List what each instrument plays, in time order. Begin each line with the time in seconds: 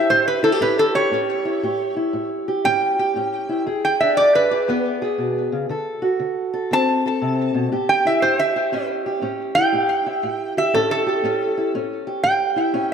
Already playing: steel-string acoustic guitar E4 G4
0.10 steel-string acoustic guitar A2, resonator guitar played with a steel bar C5
0.28 resonator guitar played with a steel bar B4
0.43 steel-string acoustic guitar E4, resonator guitar played with a steel bar A4
0.52 steel-string acoustic guitar G4
0.61 steel-string acoustic guitar A2 C#4, resonator guitar played with a steel bar B4
0.79 resonator guitar played with a steel bar A4
0.95 steel-string acoustic guitar G4, resonator guitar played with a steel bar C#5
1.11 steel-string acoustic guitar A2 C#4
1.45 steel-string acoustic guitar E4
1.63 steel-string acoustic guitar A2 G4
1.96 steel-string acoustic guitar E4
2.13 steel-string acoustic guitar A2
2.48 steel-string acoustic guitar G4
2.64 steel-string acoustic guitar A2 C#4, resonator guitar played with a steel bar G5
2.99 steel-string acoustic guitar G4
3.16 steel-string acoustic guitar A2 C#4
3.49 steel-string acoustic guitar E4
3.66 steel-string acoustic guitar E2 G#4
3.85 resonator guitar played with a steel bar G5
4.01 steel-string acoustic guitar D4, resonator guitar played with a steel bar E5
4.17 steel-string acoustic guitar E2, resonator guitar played with a steel bar D5
4.35 resonator guitar played with a steel bar B4
4.51 steel-string acoustic guitar G#4
4.68 steel-string acoustic guitar E2 B3
5.02 steel-string acoustic guitar G#4
5.18 steel-string acoustic guitar B2
5.52 steel-string acoustic guitar C#3
5.69 steel-string acoustic guitar D3 A4
6.02 steel-string acoustic guitar F#4
6.20 steel-string acoustic guitar D3
6.54 steel-string acoustic guitar A4
6.71 steel-string acoustic guitar D3 C4, resonator guitar played with a steel bar A5
7.06 steel-string acoustic guitar A4
7.22 steel-string acoustic guitar C3
7.54 steel-string acoustic guitar B2
7.72 steel-string acoustic guitar A2 G4
7.89 resonator guitar played with a steel bar G5
8.05 steel-string acoustic guitar E4, resonator guitar played with a steel bar E5
8.22 steel-string acoustic guitar A2, resonator guitar played with a steel bar C5
8.39 resonator guitar played with a steel bar E5
8.56 steel-string acoustic guitar G4
8.72 steel-string acoustic guitar A2 C#4
9.06 steel-string acoustic guitar G4
9.22 steel-string acoustic guitar A2 C#4
9.55 steel-string acoustic guitar E4, resonator guitar played with a steel bar G5
9.72 steel-string acoustic guitar A2 G4
10.06 steel-string acoustic guitar E4
10.23 steel-string acoustic guitar A2
10.57 steel-string acoustic guitar G4, resonator guitar played with a steel bar E5
10.74 steel-string acoustic guitar A2 C#4, resonator guitar played with a steel bar A4
10.91 resonator guitar played with a steel bar A4
11.07 steel-string acoustic guitar G4
11.24 steel-string acoustic guitar A2 C#4
11.58 steel-string acoustic guitar E4
11.74 steel-string acoustic guitar A2 C#4
12.07 steel-string acoustic guitar G4
12.23 steel-string acoustic guitar A2, resonator guitar played with a steel bar G5
12.56 steel-string acoustic guitar E4
12.73 steel-string acoustic guitar A2 C#4